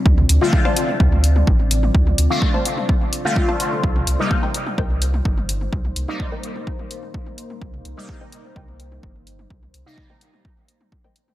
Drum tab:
HH |--x---x---x---x-|--x---x---x---x-|--x---x---x---x-|--x---x---x---x-|
T1 |-o-o-o-o-o-o-o-o|-o-o-o-o-o-o-o-o|-o-o-o-o-o-o-o-o|-o-o-o-o-o-o-o-o|
T2 |-o------o-------|----------------|-o------o-------|----------------|
BD |o---o---o---o---|o---o---o---o---|o---o---o---o---|o---o---o---o---|

HH |--x---x---x---x-|--x---x---x---x-|
T1 |-o-o-o-o-o-o-o-o|-o-o-o-o-o-o-o-o|
T2 |-o------o-------|----------------|
BD |o---o---o---o---|o---o---o---o---|